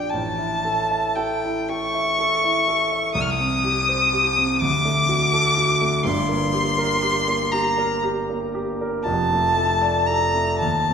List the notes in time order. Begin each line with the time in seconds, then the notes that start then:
Already playing: D4 G4 D5 G5
0.09 A1 A5
0.39 E4
0.65 A4
0.91 E5
1.15 A4 G5
1.44 E4
1.69 A4 C#6
1.94 E5
2.19 A4
2.44 E4
2.68 A4
2.92 E5
3.14 C2 D#6
3.22 F6
3.30 D#6
3.40 C4
3.64 G4
3.89 C5
4.13 G4
4.38 C4
4.60 D2 D6
4.85 A3
5.09 F#4
5.33 A4
5.57 F#4
5.82 A3
6.04 G1 G2 C6
6.29 A#3
6.53 G4
6.78 A#4
7.02 G4
7.28 A#3
7.52 G4 A#5
7.78 A#4
8.04 G4
8.30 A#3
8.55 G4
8.81 A#4
9.03 F1 F2 A5
9.33 A3
9.57 A4
9.81 D5
10.07 A4 A#5
10.34 A3
10.59 D#2 A5
10.90 C4